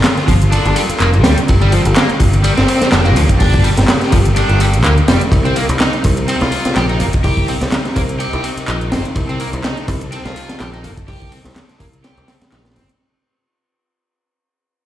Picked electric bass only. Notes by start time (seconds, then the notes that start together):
0.28 G1
0.65 G1
0.90 muted picked electric bass stroke
1.00 F1
1.24 D2
1.49 G1
1.86 G1
2.20 G1
2.58 G1
2.82 muted picked electric bass stroke
2.93 F1
3.17 D2
3.41 G1
3.78 G1
4.13 G1
4.50 G1
4.84 D2
5.08 F1
5.32 C2
5.69 C2
6.05 C2
6.41 C2
6.66 muted picked electric bass stroke
6.76 A#1
7.00 G1
7.24 C2
7.61 C2
7.96 C2
8.33 C2
8.57 muted picked electric bass stroke
8.68 A#1
8.92 G1
9.16 C2
9.53 C2
9.88 C2
10.26 C2
10.50 muted picked electric bass stroke
10.60 A#1
10.84 G1
11.08 C2
11.45 C2
11.80 C2
12.18 C2
12.42 muted picked electric bass stroke
12.52 A#1
12.76 G1